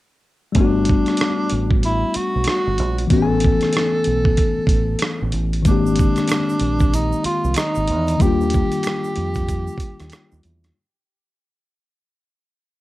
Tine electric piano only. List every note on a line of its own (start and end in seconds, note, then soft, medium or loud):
0.52 3.05 G3 medium
0.52 3.06 A3 soft
0.52 3.07 B3 soft
0.59 3.08 D4 soft
0.59 3.09 F#4 medium
3.07 5.60 E3 medium
3.07 5.61 A3 soft
3.11 5.62 B3 medium
3.11 5.63 C#4 soft
3.16 3.21 F#4 soft
3.22 5.67 G#5 medium
5.62 8.15 D#3 medium
5.62 8.16 G#3 medium
5.66 8.17 A#3 soft
5.66 8.18 C4 soft
5.71 8.19 G4 medium
8.17 10.70 D#3 medium
8.17 10.71 G3 soft
8.21 10.72 A#3 medium
8.21 10.73 D4 soft
8.26 10.74 F4 medium